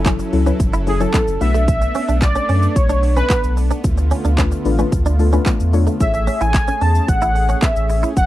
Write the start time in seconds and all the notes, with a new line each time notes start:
Already playing: F#1 F#3 C#4 E4 A4, downlifter
0.06 F#3 C#4 E4 A4, kick, clap, closed hi-hat, shaker
0.19 muted clean electric guitar stroke, shaker
0.33 C#2 F#3 C#4 E4 A4, open hi-hat, shaker
0.46 F#3 C#4 E4 B4, shaker
0.60 F#1, kick, closed hi-hat, shaker
0.73 E4, shaker
0.87 F#3 C#4 E4 G#4 A4, muted clean electric guitar stroke, open hi-hat, shaker
1.00 F#3 C#4 E4 A4, shaker
1.13 F#3 B3 C#4 E4 A4, kick, clap, closed hi-hat, shaker
1.27 F#1, shaker
1.41 B1 A3 B3 D4 F#4 B4 E5, muted clean electric guitar stroke, open hi-hat, shaker
1.54 A3, shaker
1.68 kick, closed hi-hat, shaker
1.81 muted clean electric guitar stroke, shaker
1.95 C#4, open hi-hat, shaker
2.08 B1 D4, shaker
2.22 D5, muted clean electric guitar stroke, kick, clap, closed hi-hat, shaker
2.35 C#4, shaker
2.49 F#2 C#4, open hi-hat, shaker
2.62 shaker
2.76 B1 C#5, kick, closed hi-hat, shaker
2.89 D4, shaker
3.03 muted clean electric guitar stroke, open hi-hat, shaker
3.16 C#4 B4, shaker
3.30 B3, kick, clap, closed hi-hat, shaker
3.44 B1, shaker
3.57 muted clean electric guitar stroke, open hi-hat, shaker
3.71 D4, shaker
3.84 D2 D3 A3 F4, kick, closed hi-hat, shaker
3.98 muted clean electric guitar stroke, shaker
4.11 C#4, open hi-hat, shaker
4.25 D2 D4, shaker
4.38 A3 C#4 D4 F4 B4, kick, clap, closed hi-hat, shaker
4.52 muted clean electric guitar stroke, shaker
4.65 A1 A3 D4 F4 B4, open hi-hat, shaker
4.78 A3 C#4 D4 F4 B4, shaker
4.92 D2, kick, closed hi-hat, shaker
5.06 D4, shaker
5.19 A3 D4 F4 A4, muted clean electric guitar stroke, open hi-hat, shaker
5.33 A3 C#4 D4 F4 B4, shaker
5.46 A3 B3 D4 F4 D5, kick, clap, closed hi-hat, shaker
5.60 E2, shaker
5.73 A3 D4 F4 C#5, muted clean electric guitar stroke, open hi-hat, shaker
5.87 A3, shaker
6.00 A1 A3 C#4 E4 G#4 C#5 E5, kick, closed hi-hat, shaker
6.14 muted clean electric guitar stroke, shaker
6.27 C#4, open hi-hat, shaker
6.41 A1 E4 G#5, shaker
6.54 muted clean electric guitar stroke, kick, clap, closed hi-hat, shaker
6.68 C#4, shaker
6.81 E2 C#4 A5, open hi-hat, shaker
6.95 shaker
7.08 A1 F#5, kick, closed hi-hat, shaker
7.22 E4, shaker
7.35 muted clean electric guitar stroke, open hi-hat, shaker
7.49 C#4, shaker
7.62 B3 E5, kick, clap, closed hi-hat, shaker
7.76 A1, shaker
7.89 muted clean electric guitar stroke, open hi-hat, shaker
8.03 E4, shaker
8.16 F#1 F#3 E4 A4 F#5, kick, closed hi-hat, shaker